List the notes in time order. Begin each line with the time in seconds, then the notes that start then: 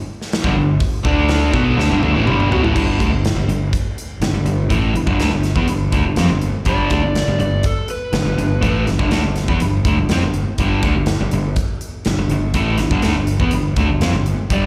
0.21 snare
0.32 snare, open hi-hat
0.44 G1 G2 D3, kick
0.56 G1 G2 D3
0.80 kick, open hi-hat
1.05 D2 D3 A3 D4, kick
1.28 snare, open hi-hat
1.54 B1 B2 F#3 B3, kick
1.77 D2 D3 A3, snare
1.90 G1 G2 D3
2.02 D2 D3 A3, high tom
2.14 A1 A2 E3
2.26 G1 G2 D3 G3, mid tom
2.40 mid tom
2.50 B1 B2 F#3, floor tom
2.63 A1 A2 E3, floor tom
2.74 G1 G2 D3 G3, kick, crash
2.99 D2 D3 A3, kick, closed hi-hat
3.10 G1 G2 D3
3.25 snare, closed hi-hat
3.35 G1 G2 D3
3.47 G1 G2 D3, closed hi-hat
3.73 kick, closed hi-hat
3.98 closed hi-hat
4.20 G1 G2 D3, snare, closed hi-hat
4.33 G1 G2 D3
4.44 G1 G2 D3, closed hi-hat
4.69 A1 A2 E3 A3, kick, closed hi-hat
4.94 G1 G2 D3, closed hi-hat
5.06 G1 G2 D3, kick
5.18 D2 D3 A3, snare, closed hi-hat
5.29 G1 G2 D3
5.43 snare, closed hi-hat
5.56 E2 E3 B3, kick
5.67 G1 G2 D3, closed hi-hat
5.92 D2 D3 A3, kick, closed hi-hat
6.05 G1 G2 D3
6.16 F2 F3 C4, snare, closed hi-hat
6.28 G1 G2 D3
6.42 closed hi-hat
6.65 G1 G2 D3 G3 D5, kick, closed hi-hat
6.90 D2 D3 A3, kick, closed hi-hat
7.02 G1 G2 D3
7.15 snare, closed hi-hat
7.28 G1 G2 D3
7.39 G1 G2 D3 D5, closed hi-hat
7.63 A4, kick, closed hi-hat
7.88 B4, closed hi-hat
8.13 G1 G2 D3, snare, closed hi-hat
8.25 G1 G2 D3
8.38 G1 G2 D3, closed hi-hat
8.61 A1 A2 E3 A3, kick, closed hi-hat
8.86 G1 G2 D3, snare, closed hi-hat
8.99 G1 G2 D3, kick
9.11 D2 D3 A3, snare, closed hi-hat
9.24 G1 G2 D3
9.36 snare, closed hi-hat
9.48 E2 E3 B3, kick
9.60 G1 G2 D3, closed hi-hat
9.85 D2 D3 A3, kick, closed hi-hat
9.98 G1 G2 D3
10.09 F2 F3 C4, snare, closed hi-hat
10.22 G1 G2 D3
10.34 closed hi-hat
10.58 G1 G2 D3 G3, kick, closed hi-hat
10.83 D2 D3 A3, kick, closed hi-hat
10.96 G1 G2 D3
11.06 snare, closed hi-hat
11.21 G1 G2 D3
11.31 G1 G2 D3, closed hi-hat
11.56 kick, closed hi-hat
11.81 closed hi-hat
12.05 G1 G2 D3, snare, closed hi-hat
12.18 G1 G2 D3
12.29 G1 G2 D3, closed hi-hat
12.54 A1 A2 E3 A3, kick, closed hi-hat
12.78 G1 G2 D3, snare, closed hi-hat
12.91 G1 G2 D3, kick
13.02 D2 D3 A3, snare, closed hi-hat
13.15 G1 G2 D3
13.27 closed hi-hat
13.40 E2 E3 B3, kick
13.51 G1 G2 D3, closed hi-hat
13.76 D2 D3 A3, kick, closed hi-hat
13.88 G1 G2 D3
14.00 F2 F3 C4, snare, closed hi-hat
14.13 G1 G2 D3
14.26 closed hi-hat
14.50 G1 G2 D3 G3 D5, kick, closed hi-hat